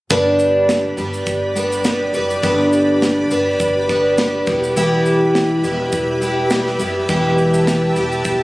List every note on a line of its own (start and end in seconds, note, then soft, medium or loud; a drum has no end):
0.10 0.94 G1 loud
0.10 0.98 G2 medium
0.10 0.98 D3 medium
0.10 0.97 G3 medium
0.10 0.98 B3 medium
0.10 0.97 D4 medium
0.10 8.43 G4 medium
0.10 8.43 B4 medium
0.10 0.99 B4 medium
0.10 4.43 D5 medium
0.10 4.43 B5 medium
0.10 kick loud
0.10 shaker medium
0.39 shaker soft
0.69 snare loud
0.69 shaker medium
0.97 1.24 G1 medium
0.97 1.55 G3 medium
0.97 1.56 B3 medium
0.97 1.56 D4 medium
0.97 1.57 B4 medium
0.97 shaker soft
1.14 shaker soft
1.26 2.10 G1 medium
1.26 kick medium
1.26 shaker medium
1.55 1.83 G3 medium
1.55 1.84 B3 medium
1.55 1.84 D4 medium
1.55 1.85 B4 medium
1.55 shaker medium
1.72 shaker soft
1.84 2.12 G3 medium
1.84 2.13 B3 medium
1.84 2.14 D4 medium
1.84 2.14 B4 medium
1.84 snare loud
1.84 shaker medium
2.13 2.41 F#1 medium
2.13 2.42 G3 medium
2.13 2.42 B3 medium
2.13 2.42 D4 medium
2.13 2.43 B4 medium
2.13 shaker soft
2.30 shaker soft
2.43 3.27 G1 loud
2.43 3.30 G2 medium
2.43 3.30 D3 medium
2.43 3.30 G3 medium
2.43 3.31 B3 loud
2.43 3.31 D4 medium
2.43 3.32 B4 medium
2.43 kick loud
2.43 shaker medium
2.73 shaker soft
3.02 snare loud
3.02 shaker medium
3.30 3.57 G1 medium
3.30 3.88 G3 medium
3.30 3.89 B3 medium
3.30 3.89 D4 medium
3.30 3.90 B4 medium
3.30 shaker soft
3.60 4.43 G1 medium
3.60 kick medium
3.60 shaker medium
3.88 4.16 G3 medium
3.88 4.17 B3 medium
3.88 4.18 D4 medium
3.88 4.18 B4 medium
3.88 kick medium
3.88 shaker medium
4.17 4.46 G3 medium
4.17 4.47 B3 medium
4.17 4.47 D4 medium
4.17 4.48 B4 medium
4.17 snare loud
4.17 shaker medium
4.47 5.60 E1 medium
4.47 4.76 G3 medium
4.47 4.76 B3 medium
4.47 4.76 E4 medium
4.47 4.76 G4 medium
4.47 8.43 E5 medium
4.47 6.77 B5 medium
4.47 kick loud
4.47 shaker medium
4.63 shaker soft
4.76 5.63 E3 medium
4.76 5.63 G3 medium
4.76 5.64 B3 medium
4.76 5.64 E4 loud
4.76 5.65 G4 loud
4.76 shaker medium
5.06 shaker soft
5.35 snare loud
5.35 shaker medium
5.63 5.90 E1 medium
5.63 6.21 G3 medium
5.63 6.22 B3 medium
5.63 6.22 E4 medium
5.63 6.23 G4 medium
5.63 shaker soft
5.92 6.76 E1 medium
5.92 kick medium
5.92 shaker medium
6.21 6.49 G3 medium
6.21 6.50 B3 medium
6.21 6.51 E4 medium
6.21 6.52 G4 medium
6.21 shaker medium
6.50 6.78 G3 medium
6.50 6.79 B3 medium
6.50 6.80 E4 medium
6.50 6.80 G4 medium
6.50 snare loud
6.50 shaker medium
6.67 snare soft
6.79 7.07 F#1 medium
6.79 7.08 G3 medium
6.79 7.09 B3 medium
6.79 7.09 E4 medium
6.79 7.09 G4 medium
6.79 8.43 A5 medium
6.79 shaker soft
7.09 7.92 E1 loud
7.09 7.96 E3 medium
7.09 7.96 G3 medium
7.09 7.97 B3 medium
7.09 7.96 E4 medium
7.09 7.98 G4 loud
7.09 kick loud
7.09 shaker medium
7.38 shaker soft
7.54 shaker medium
7.67 snare loud
7.67 shaker medium
7.96 8.23 E1 medium
7.96 8.43 G3 medium
7.96 8.43 B3 medium
7.96 8.43 E4 medium
7.96 8.43 G4 medium
7.96 shaker soft
8.12 shaker soft
8.25 8.43 E1 medium
8.25 kick loud
8.25 shaker medium